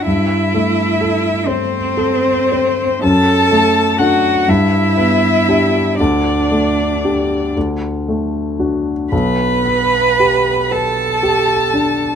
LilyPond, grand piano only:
\new Staff \with { instrumentName = "Grand piano" } { \time 6/8 \key g \major \tempo 4. = 39 g,8 a8 a'8 c'8 a'8 c'8 | fis,8 a8 <d' a'>8 g,8 b8 <d' g'>8 | d,8 a8 <d' g'>8 d,8 a8 <d' fis'>8 | b,,8 b8 g'8 b'8 g'8 d'8 | }